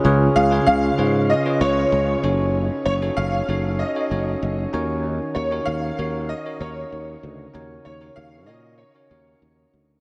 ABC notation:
X:1
M:4/4
L:1/16
Q:1/4=96
K:Ebm
V:1 name="Grand piano"
z2 f2 f4 e2 d4 z2 | z2 d2 f4 e6 z2 | z2 d2 f4 e2 d4 z2 | z2 d2 f2 e2 d6 z2 |]
V:2 name="Tine electric piano"
[DFAcd]3 [DFAcd]3 [DFAcd]3 [DFAcd] [DFAcd]4 [DEG=Ad]2- | [DEG=Ad]2 z [DEGAd]3 [DEGAd]3 [DEGAd] [DEGAd]4 [DEGBd]2- | [DEGBd]2 z [DEGBd]3 [DEGBd]3 [DEGBd] [DEGBd]4- [DEGBd] z | [DEGBd]3 [DEGBd]3 [DEGBd]3 [DEGBd] [DEGBd]4- [DEGBd] z |]
V:3 name="Tine electric piano" clef=bass
D,6 z8 z2 | z12 z2 E,2- | E,4 z8 z2 D,2- | D,4 z12 |]
V:4 name="Fretless electric bass" clef=bass
D,,2 D,,2 D,,2 A,,3 z D,,2 D,,2 G,,,2- | G,,,2 G,,,2 G,,,2 G,,,3 z G,,,2 G,,,2 E,,2- | E,,2 E,,2 E,,2 E,,3 z E,,2 E,,2 =D,,2 | E,,2 E,,2 E,,2 B,,3 z E,,2 E,,2 =D,,2 |]